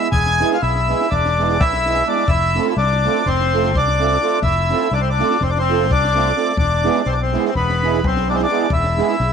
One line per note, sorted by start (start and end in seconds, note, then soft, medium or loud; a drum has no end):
0.11 0.42 E1 loud
0.11 0.52 G#4 medium
0.11 0.57 G#5 loud
0.11 kick medium
0.26 snare soft
0.39 0.57 G#3 medium
0.39 0.57 B3 medium
0.39 0.58 E4 medium
0.39 0.58 G#4 medium
0.39 snare soft
0.52 0.61 F4 medium
0.52 0.62 F5 medium
0.52 snare soft
0.62 0.92 B1 medium
0.62 1.08 E4 medium
0.62 1.13 E5 medium
0.62 snare soft
0.76 snare soft
0.88 1.06 G#3 medium
0.88 1.07 B3 medium
0.88 1.07 E4 medium
0.88 1.07 G#4 medium
0.88 snare soft
1.01 snare soft
1.10 1.61 E1 medium
1.10 1.58 D4 medium
1.10 1.62 D5 medium
1.10 kick medium
1.10 snare soft
1.25 snare soft
1.38 1.56 G#3 medium
1.38 1.56 B3 soft
1.38 1.57 E4 medium
1.38 1.57 G#4 medium
1.38 snare soft
1.50 snare soft
1.60 2.01 B1 medium
1.60 2.04 E4 medium
1.60 2.08 E5 loud
1.60 kick medium
1.73 snare soft
1.86 2.02 G#3 medium
1.86 2.03 B3 medium
1.86 2.03 E4 medium
1.86 2.03 G#4 medium
1.86 snare soft
1.96 snare soft
2.06 2.23 G#3 medium
2.06 2.24 B3 soft
2.06 2.27 D4 medium
2.06 2.24 E4 soft
2.06 2.25 G#4 medium
2.06 2.30 D5 medium
2.17 snare soft
2.28 2.58 F1 loud
2.28 2.68 E4 medium
2.28 2.68 E5 loud
2.28 kick medium
2.55 2.73 A3 medium
2.55 2.73 C4 medium
2.55 2.74 F4 medium
2.55 2.74 A4 medium
2.55 snare soft
2.67 2.76 E4 medium
2.67 2.77 E5 medium
2.67 snare soft
2.76 3.06 C2 loud
2.76 3.23 D4 medium
2.76 3.29 D5 medium
2.76 snare soft
3.04 3.22 A3 medium
3.04 3.22 C4 medium
3.04 3.22 F4 medium
3.04 3.23 A4 medium
3.04 snare soft
3.15 snare soft
3.26 3.76 F1 medium
3.26 3.73 C4 medium
3.26 3.78 C5 medium
3.26 kick medium
3.26 snare soft
3.41 snare soft
3.54 3.71 A3 medium
3.54 3.72 C4 medium
3.54 3.72 F4 medium
3.54 3.72 A4 medium
3.54 snare soft
3.64 snare soft
3.75 4.16 C2 medium
3.75 4.40 D4 medium
3.75 4.39 D5 loud
3.75 kick medium
3.88 snare soft
3.99 4.17 A3 medium
3.99 4.17 C4 medium
3.99 4.17 F4 medium
3.99 4.18 A4 medium
3.99 snare soft
4.10 snare soft
4.21 4.38 A3 medium
4.21 4.39 C4 medium
4.21 4.39 F4 soft
4.21 4.39 A4 medium
4.21 snare soft
4.42 4.72 F1 medium
4.42 4.89 E4 medium
4.42 4.94 E5 loud
4.42 kick medium
4.70 4.87 A3 medium
4.70 4.88 C4 medium
4.70 4.88 F4 medium
4.70 4.88 A4 medium
4.70 snare soft
4.82 snare soft
4.91 5.21 C2 medium
4.91 5.01 D4 medium
4.91 5.01 D5 medium
4.91 snare soft
5.01 5.09 C4 medium
5.01 5.09 C5 medium
5.10 5.41 D4 medium
5.10 5.43 D5 medium
5.18 5.36 A3 medium
5.18 5.37 C4 medium
5.18 5.37 F4 medium
5.18 5.37 A4 medium
5.18 snare soft
5.31 snare soft
5.41 5.91 F1 medium
5.41 5.50 C4 medium
5.41 5.51 C5 medium
5.41 kick soft
5.41 snare soft
5.49 5.58 D4 medium
5.49 5.58 D5 medium
5.56 5.90 C4 medium
5.56 5.92 C5 medium
5.56 snare soft
5.69 5.86 A3 medium
5.69 5.86 C4 medium
5.69 5.86 F4 medium
5.69 5.87 A4 medium
5.69 snare soft
5.80 snare soft
5.91 6.31 C2 medium
5.91 6.41 D4 medium
5.91 6.57 D5 loud
5.91 kick medium
6.05 snare soft
6.14 6.31 A3 medium
6.14 6.32 C4 medium
6.14 6.32 F4 medium
6.14 6.32 A4 medium
6.14 snare soft
6.27 snare soft
6.35 6.52 A3 medium
6.35 6.53 C4 medium
6.35 6.53 F4 medium
6.35 6.53 A4 medium
6.35 snare soft
6.57 6.87 E1 medium
6.57 7.03 D4 medium
6.57 7.08 D5 medium
6.57 kick medium
6.84 7.01 G#3 medium
6.84 7.01 B3 medium
6.84 7.02 E4 medium
6.84 7.02 G#4 medium
6.84 snare soft
6.95 snare soft
7.05 7.36 B1 medium
7.05 7.11 C4 medium
7.05 7.14 C5 medium
7.05 snare soft
7.12 7.20 D4 medium
7.12 7.22 D5 medium
7.21 7.47 C4 medium
7.21 7.45 C5 medium
7.32 7.50 G#3 medium
7.32 7.50 B3 medium
7.32 7.51 E4 medium
7.32 7.51 G#4 medium
7.32 snare soft
7.45 7.54 C4 medium
7.45 7.54 C5 medium
7.45 snare soft
7.55 8.04 E1 medium
7.55 8.01 B3 medium
7.55 8.06 B4 medium
7.55 kick medium
7.55 snare soft
7.69 snare soft
7.82 7.99 G#3 medium
7.82 8.00 B3 medium
7.82 8.00 E4 medium
7.82 8.00 G#4 medium
7.82 snare soft
7.94 snare soft
8.04 8.44 B1 medium
8.04 8.28 C4 medium
8.04 8.28 C5 medium
8.04 kick medium
8.17 snare soft
8.28 8.45 G#3 medium
8.28 8.46 B3 medium
8.28 8.33 D4 medium
8.28 8.46 E4 medium
8.28 8.46 G#4 medium
8.28 8.36 D5 medium
8.28 snare soft
8.34 8.40 C4 medium
8.34 8.41 C5 medium
8.39 8.72 D5 medium
8.39 snare soft
8.44 8.70 D4 medium
8.48 8.66 G#3 medium
8.48 8.66 B3 medium
8.48 8.67 E4 medium
8.48 8.67 G#4 medium
8.48 snare soft
8.70 9.00 E1 medium
8.70 9.33 E4 medium
8.70 9.33 E5 medium
8.70 kick loud
8.84 snare soft
8.97 9.15 G#3 medium
8.97 9.15 B3 medium
8.97 9.15 E4 medium
8.97 9.16 G#4 medium
8.97 snare soft
9.09 snare soft
9.20 9.33 B1 medium
9.20 snare soft